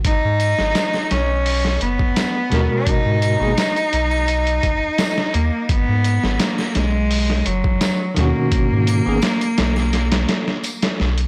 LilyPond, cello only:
\new Staff \with { instrumentName = "Cello" } { \time 4/4 \key gis \minor \tempo 4 = 85 dis'4. cis'4 b4. | dis'2.~ dis'8 ais8 | b4 ais8 gis4 fis4 ais8~ | ais2.~ ais8 r8 | }